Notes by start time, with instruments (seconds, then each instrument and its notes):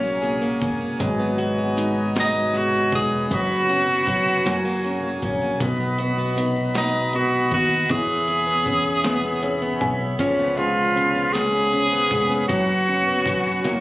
Already playing: fingered electric bass A#1, steel-string acoustic guitar F#3 C#4 G#4, felt piano A#3, tenor saxophone C#4, tonewheel organ F#4 A#4 C#5 G#5
0.03 steel-string acoustic guitar A#3
0.22 felt piano A#3, steel-string acoustic guitar G#4, closed hi-hat
0.42 steel-string acoustic guitar A#3
0.61 fingered electric bass F#1, felt piano A#3, steel-string acoustic guitar C#4, kick, closed hi-hat
0.81 steel-string acoustic guitar A#3
0.99 fingered electric bass G#1, steel-string acoustic guitar F#3, felt piano G#3, tonewheel organ B4 D#5, kick, closed hi-hat
1.19 steel-string acoustic guitar B3
1.38 felt piano G#3, steel-string acoustic guitar F#4, closed hi-hat
1.58 steel-string acoustic guitar B3
1.77 felt piano G#3, steel-string acoustic guitar D#4, closed hi-hat
1.97 steel-string acoustic guitar B3
2.15 steel-string acoustic guitar F#3, felt piano G#3, snare, closed hi-hat
2.20 tenor saxophone D#4
2.35 steel-string acoustic guitar B3
2.54 felt piano G#3, steel-string acoustic guitar F#4, tenor saxophone F#4, closed hi-hat
2.74 steel-string acoustic guitar B3
2.92 fingered electric bass E1, felt piano G#3, steel-string acoustic guitar D#4, tenor saxophone G#4, kick, closed hi-hat
3.12 steel-string acoustic guitar B3
3.30 fingered electric bass F#1, felt piano F#3, steel-string acoustic guitar F#3, tonewheel organ B4 C#5 B5, kick, closed hi-hat
3.35 tenor saxophone F#4
3.50 steel-string acoustic guitar B3
3.69 felt piano C#4, steel-string acoustic guitar F#4, closed hi-hat
3.88 steel-string acoustic guitar B3
4.07 felt piano F#3, steel-string acoustic guitar C#4, kick, closed hi-hat
4.27 steel-string acoustic guitar B3
4.45 fingered electric bass F#1, steel-string acoustic guitar F#3, felt piano F#3, tonewheel organ A#4 G#5, snare, closed hi-hat
4.65 steel-string acoustic guitar A#3
4.84 felt piano C#4, steel-string acoustic guitar G#4, closed hi-hat
5.03 steel-string acoustic guitar A#3
5.22 fingered electric bass A#1, felt piano F#3, steel-string acoustic guitar C#4, kick, closed hi-hat
5.42 steel-string acoustic guitar A#3
5.60 fingered electric bass B1, steel-string acoustic guitar B3, felt piano B3, tonewheel organ B4 D#5 B5, kick, closed hi-hat
5.80 steel-string acoustic guitar B3
5.98 felt piano B3, steel-string acoustic guitar F#4, closed hi-hat
6.18 steel-string acoustic guitar B3
6.37 felt piano B3, steel-string acoustic guitar D#4, closed hi-hat
6.56 steel-string acoustic guitar B3
6.75 steel-string acoustic guitar B3, felt piano B3, tenor saxophone D#4, snare, closed hi-hat
6.94 steel-string acoustic guitar B3
7.13 felt piano B3, steel-string acoustic guitar F#4, tenor saxophone F#4, closed hi-hat
7.33 steel-string acoustic guitar B3
7.51 fingered electric bass D#2, felt piano B3, steel-string acoustic guitar D#4, tenor saxophone F#4, kick, closed hi-hat
7.71 steel-string acoustic guitar B3
7.89 fingered electric bass E2, felt piano E3, steel-string acoustic guitar B3, tonewheel organ G#4 C#5 E5, tenor saxophone G#4, kick, closed hi-hat
8.09 steel-string acoustic guitar B3
8.28 felt piano B3, steel-string acoustic guitar G#4, closed hi-hat
8.47 steel-string acoustic guitar B3
8.66 steel-string acoustic guitar C#4, felt piano C#4, kick, closed hi-hat
8.85 steel-string acoustic guitar B3
9.04 felt piano B3, steel-string acoustic guitar B3, snare, closed hi-hat
9.24 steel-string acoustic guitar B3
9.42 felt piano C#4 C#5, steel-string acoustic guitar G#4, closed hi-hat
9.62 steel-string acoustic guitar B3
9.81 fingered electric bass B1, felt piano B3 G#5, steel-string acoustic guitar C#4, kick, closed hi-hat
10.01 steel-string acoustic guitar B3
10.19 fingered electric bass C#2, felt piano C#3, steel-string acoustic guitar F3, tenor saxophone C#4, tonewheel organ F5, kick, closed hi-hat
10.39 steel-string acoustic guitar B3
10.57 felt piano G#3, tenor saxophone F4, steel-string acoustic guitar G#4, closed hi-hat
10.77 steel-string acoustic guitar B3
10.96 felt piano C#3, steel-string acoustic guitar C#4, closed hi-hat
11.15 steel-string acoustic guitar B3
11.33 steel-string acoustic guitar F3, felt piano G#3, tenor saxophone G#4, snare, closed hi-hat
11.53 steel-string acoustic guitar B3
11.73 felt piano C#3, steel-string acoustic guitar G#4, closed hi-hat
11.92 steel-string acoustic guitar B3
12.11 fingered electric bass F1, felt piano G#3, steel-string acoustic guitar C#4, kick, closed hi-hat
12.30 steel-string acoustic guitar B3
12.48 fingered electric bass F#1, steel-string acoustic guitar F#3, felt piano F#3, tenor saxophone F#4, tonewheel organ B4 F#5 C#6, kick, closed hi-hat
12.69 steel-string acoustic guitar B3
12.88 felt piano C#4, steel-string acoustic guitar F#4, closed hi-hat
13.08 steel-string acoustic guitar B3
13.26 felt piano F#3, steel-string acoustic guitar C#4, kick, closed hi-hat
13.46 steel-string acoustic guitar B3
13.64 fingered electric bass F#1, felt piano F#3, steel-string acoustic guitar A#3, tonewheel organ A#4 F#5, snare, closed hi-hat